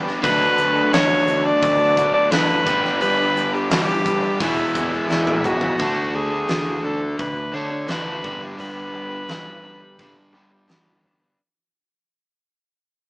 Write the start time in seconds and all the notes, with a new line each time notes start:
Already playing: G1 G3 B3 D4 G4 B4
0.03 B3 D4 B4
0.07 snare
0.21 D2 D3 F#3 A3 B3 D4 F#4 A4 B4, kick, open hi-hat, shaker
0.25 D4
0.39 D4 F#4 A4
0.58 D2 A3 F#4, shaker
0.73 D4 F#4 A4, shaker
0.91 D2 D3 F#3 A3 B3 D4 F#4 A4 C#5, snare, open hi-hat, shaker
0.95 F#4
1.26 D2 D3 A3 B3 D4 F#4 A4, shaker
1.43 D4 F#4 A4 D5
1.61 D2 D3 F#3 A3 B3 F#4, kick, open hi-hat, shaker
1.78 D4 F#4 A4
1.96 D3 F#3 A3 B3 D4 F#4 A4, kick, shaker
2.12 D4 F#4 A4 D5
2.30 F#1 D3 F#3 A3 B3 D4 F#4 A4 B4, snare, open hi-hat, shaker
2.65 G1 G2 D3 G3 B3 D4 G4 B4, kick, shaker
2.69 G3
2.82 B3 D4 B4, snare
3.00 G1 G2 D3 G3 B3 D4 G4 B4, open hi-hat, shaker
3.18 B3 D4 B4
3.36 G3 B3 D4 G4, shaker
3.52 B3 D4 G4 B4, shaker
3.69 G1 G3 B3 D4 G4 B4, snare, open hi-hat, shaker
4.04 G1 G3 B3 D4 G4 B4, kick, shaker
4.22 B3 D4 B4, shaker
4.39 E1 E2 B2 E3 G#3 B3 E4 G#4 B4, kick, open hi-hat, shaker
4.43 E3
4.57 G#3 B3 E4 G#4
4.74 E1 E3 G#3 B3 E4 G#4, kick, shaker
4.91 G#3 B3 E4 G#4, shaker
5.08 E1 E2 E3 G#3 B3 E4 G#4, snare, shaker
5.27 high tom
5.44 C#2 E3 G#3 B3 E4 F#4 G#4, mid tom, shaker
5.61 G#3 B3 E4 G#4, floor tom
5.78 D2 D3 A3 B3 D4 F#4 A4, kick, open hi-hat
5.83 D4
6.13 D2 A3 B3 F#4 G#4
6.31 D4 F#4 A4
6.48 D2 D3 A3 B3 D4 F#4 A4, snare, open hi-hat
6.83 D2 D3 A3 B3 D4 F#4 A4
7.01 muted overdriven electric guitar stroke
7.18 D2 D3 A3 B3 F#4 B4, kick, open hi-hat
7.52 D3 A3 B3 D4 F#4 A4 C#5
7.57 D3
7.71 muted overdriven electric guitar stroke
7.87 D2 D3 A3 B3 D4 F#4 B4, snare, open hi-hat
7.92 A4
8.06 D4 F#4 A4
8.23 G1 G2 D3 G3 B3 D4 G4, kick
8.27 B4
8.42 B3 D4 B4
8.57 G1 G2 D3 G3 B3 D4 G4 B4, open hi-hat
8.62 B4
8.93 G1 G3 B3 D4 G4
9.10 B3 D4 B4
9.28 G1 G2 D3 G3 B3 D4 G4 B4, snare, open hi-hat
9.62 G1 G3 B3 D4 G4 B4
9.81 muted overdriven electric guitar stroke
9.97 G1 G2 D3 G3 B3 D4 G4, kick, open hi-hat
10.02 G3
10.32 G1 G3 B3 D4 G4
10.36 G2 D3 B4
10.51 muted overdriven electric guitar stroke
10.67 G1 G2 D3 G3 B3 D4 G4, snare, open hi-hat
10.71 B4
10.86 B3 D4 B4
11.03 G1 G3 B3 D4 G4 B4
11.21 B3 D4 B4